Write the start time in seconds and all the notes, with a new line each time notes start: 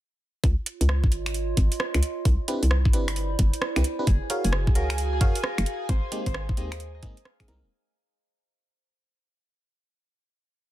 0.44 C#2 F4, kick, closed hi-hat
0.66 C#5, closed hi-hat
0.77 D#5
0.81 C#2, closed hi-hat
0.89 cross-stick
1.04 kick
1.12 G#1, closed hi-hat
1.26 finger snap, closed hi-hat
1.34 closed hi-hat
1.57 G#1, kick, closed hi-hat
1.72 closed hi-hat
1.80 cross-stick
1.94 C#2, finger snap, closed hi-hat
2.03 closed hi-hat
2.25 C2 E4, kick, closed hi-hat
2.48 C4 D4 E4 G4 B4 B5, closed hi-hat
2.63 C2, closed hi-hat
2.69 D5, cross-stick
2.82 C5, kick
2.93 G1 C4 D4 E4 G4 B4, closed hi-hat
3.08 finger snap, closed hi-hat
3.16 closed hi-hat
3.39 G1, kick, closed hi-hat
3.53 closed hi-hat
3.62 cross-stick
3.76 C2 C4 D4 E4 G4 B4, finger snap, closed hi-hat
3.84 closed hi-hat
3.99 C4 D4 E4 G4 B4
4.07 F#1 F#4 G#4 G#5, kick, closed hi-hat
4.29 F#4 G#4 A#4 C#5 F5, closed hi-hat
4.44 F#1 G#4, closed hi-hat
4.53 A#4, cross-stick
4.67 kick
4.75 C#2 F#4 G#4 A#4 C#5 F5, closed hi-hat
4.90 finger snap, closed hi-hat
4.98 closed hi-hat
5.13 G#4
5.21 F#2 F#4 G#4 A#4 C#5 F5, kick, closed hi-hat
5.35 closed hi-hat
5.44 A#4, cross-stick
5.58 F#1, finger snap, closed hi-hat
5.66 closed hi-hat
5.89 G#1 G#4 C5, kick, closed hi-hat
6.12 G#3 A#3 C4 D#4 G4, closed hi-hat
6.26 G#1 C5, kick, closed hi-hat
6.34 cross-stick
6.47 C5, kick
6.57 D#2 G#3 A#3 C4 D#4 G4 D#5, closed hi-hat
6.72 finger snap, closed hi-hat
6.80 closed hi-hat
6.95 D#5
7.03 G#2 G#3 A#3 C4 D#4 G#4, kick, closed hi-hat
7.17 closed hi-hat
7.25 F5, cross-stick
7.40 G#3 A#3 C4 D#4 G#4, finger snap, kick, closed hi-hat
7.48 C2 G#3 A#3 C4 D#4 A#4, closed hi-hat
7.63 D#1